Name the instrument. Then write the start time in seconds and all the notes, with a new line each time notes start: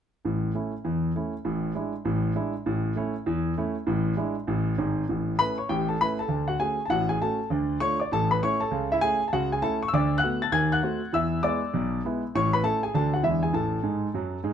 grand piano
0.25 A1 A2
0.55 A3 C#4 E4
0.85 E2 E3
1.16 A3 C#4 E4
1.45 A1 A2
1.75 G#3 D4 E4
2.05 A1 A2
2.35 G#3 D4 E4
2.66 A1 A2
2.96 A3 C#4 E4
3.26 E2 E3
3.58 A3 C#4 E4
3.87 A1 A2
4.17 G#3 D4 E4
4.47 A1 A2
4.78 G#1 G#2
5.09 A1 A2
5.39 A3 C#4 E4 B4 B5
5.58 C#5 C#6
5.69 A1 A2 G4 G5
5.89 A4 A5
6.01 A3 C#4 E4 B4 B5
6.19 A4 A5
6.28 D2 D3
6.48 F#4 F#5
6.60 A3 C#4 F#4 G#4 G#5
6.86 A2 A5
6.90 A1 F#4 F#5
7.09 G#4 G#5
7.21 A3 C#4 F#4 A4 A5
7.50 D2 D3
7.80 A3 D4 F4 C#5 C#6
8.00 D5 D6
8.12 A1 A2 A4 A5
8.31 B4 B5
8.43 A3 C#4 E4 C#5 C#6
8.60 A4 A5
8.71 C#2 C#3
8.92 E4 E5
9.01 A3 C#4 E4 G#4 G#5
9.28 A5
9.33 C#2 C#3 F#4 F#5
9.52 G#4 G#5
9.62 A3 C#4 E4 A4 A5
9.83 C#6
9.88 E6
9.93 D2 D3 D5 D6
10.18 F#5 F#6
10.23 A3 B3 F#4
10.42 A5 A6
10.52 D#2 D#3 G#5 G#6
10.72 F#5 F#6
10.83 A3 C4 F#4
11.13 E2 E3 E5 E6
11.43 G#3 B3 E4 D5 D6
11.73 B1 B2
12.05 G#3 B3 E4
12.35 A1 A2 C#5 C#6
12.53 B4 B5
12.63 A3 C#4 E4 A4 A5
12.83 G#4 G#5
12.94 D2 D3 A3 D4 F#4 A4 A5
13.14 F#4 F#5
13.23 E2 E3 G#3 D4 E4 E5
13.43 G#4 G#5
13.53 A1 A2 A4 A5
13.83 G#2 G#3
14.14 F#2 F#3
14.44 G#2 G#3